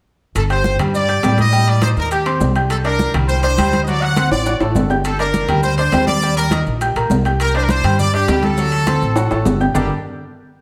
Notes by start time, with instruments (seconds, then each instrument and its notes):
0.35 upright bass G1, trumpet section A4, high conga, high timbale, maracas
0.50 grand piano G4 G5 G6, trumpet section C5, high conga, high timbale, maracas
0.64 high conga, maracas
0.79 upright bass G2, grand piano G3 G4 G5, low conga, high timbale, maracas
0.94 trumpet section D5, high conga, maracas
1.08 grand piano G4 G5 G6, high conga, high timbale, maracas
1.23 upright bass A2, grand piano G3 G4 G5, high conga, high timbale, low timbale, maracas
1.38 trumpet section D#5, high conga, high timbale, maracas
1.52 grand piano G3 G4 G5, high conga, maracas
1.67 trumpet section D5, high conga, high timbale, maracas
1.81 grand piano D#4 D#5 D#6, trumpet section C5, high conga, high timbale, maracas
1.96 upright bass D#2, trumpet section A#4, high conga, maracas
2.11 grand piano G4 G5 G6, trumpet section G4, high conga, high timbale, maracas
2.26 grand piano C4 C5 C6, high conga, high timbale, maracas
2.40 upright bass C2, high conga, low timbale, maracas
2.55 grand piano G4 G5 G6, high conga, high timbale, maracas
2.70 trumpet section A4, high conga, high timbale, maracas
2.84 grand piano D4 D5 D6, trumpet section A#4, high conga, high timbale, maracas
2.99 high conga, maracas
3.14 upright bass C2, grand piano G3 G4 G5, low conga, high timbale, maracas
3.28 trumpet section C5, high conga, maracas
3.42 grand piano D4 D5 D6, trumpet section C5, high conga, high timbale, maracas
3.58 upright bass D2, grand piano G3 G4 G5, high conga, high timbale, maracas
3.73 high conga, high timbale, maracas
3.83 trumpet section D#5, maracas
3.87 grand piano F#3 F#4 F#5, trumpet section D5, high conga
4.02 trumpet section F#5, high conga, high timbale, maracas
4.16 grand piano C4 C5 C6, high conga, high timbale, maracas
4.31 upright bass A1, trumpet section D5, high conga, high timbale, maracas
4.45 grand piano F#4 F#5 F#6, high conga, high timbale, maracas
4.60 upright bass A1, grand piano A3 A4 A5, high conga, high timbale, maracas
4.75 upright bass G1, high conga, low timbale, maracas
4.90 grand piano G4 G5 G6, high conga, low timbale, maracas
5.04 trumpet section A4, high conga, high timbale, maracas
5.19 grand piano D4 D5 D6, trumpet section A#4, high conga, high timbale, maracas
5.34 high conga, maracas
5.48 upright bass D2, grand piano G3 G4 G5, low conga, high timbale, maracas
5.63 trumpet section C5, high conga, maracas
5.77 grand piano D4 D5 D6, trumpet section C5, high conga, high timbale, maracas
5.92 upright bass D#2, grand piano G3 G4 G5, high conga, high timbale, low timbale, maracas
6.07 trumpet section D5, high conga, high timbale, maracas
6.22 grand piano G3 G4 G5, high conga, maracas
6.36 trumpet section A#4, high conga, high timbale, maracas
6.51 grand piano D#4 D#5 D#6, high conga, high timbale, maracas
6.66 upright bass A#1, high conga, maracas
6.80 grand piano G4 G5 G6, high conga, high timbale, maracas
6.95 upright bass A#1, grand piano A#3 A#4 A#5, high conga, high timbale, maracas
7.10 upright bass C2, high conga, low timbale, maracas
7.25 grand piano G4 G5 G6, high conga, high timbale, maracas
7.40 trumpet section A#4, high conga, high timbale, maracas
7.54 grand piano D4 D5 D6, trumpet section C5, high conga, high timbale, maracas
7.62 trumpet section A#4
7.69 trumpet section C5, high conga, maracas
7.83 upright bass G2, grand piano G3 G4 G5, low conga, high timbale, maracas
7.99 trumpet section D5, high conga, low conga, maracas
8.14 grand piano D4 D5 D6, trumpet section G4, high conga, high timbale, maracas
8.28 upright bass D2, grand piano G3 G4 G5, high conga, high timbale, low timbale, maracas
8.43 trumpet section A4, high conga, high timbale, maracas
8.57 grand piano F#3 F#4 F#5, high conga, maracas
8.72 high conga, high timbale, maracas
8.86 grand piano C4 C5 C6, high conga, high timbale, maracas
9.01 upright bass A1, high conga, maracas
9.16 grand piano F#4 F#5 F#6, high conga, high timbale, maracas
9.31 upright bass A1, grand piano A3 A4 A5, high conga, high timbale, maracas
9.45 upright bass G1, high conga, low timbale, maracas
9.60 grand piano G4 G5 G6, high conga, low timbale, maracas
9.74 upright bass G1, grand piano G3 D4 G4 A4 A#4 D5, trumpet section G4, low conga, low timbale, maracas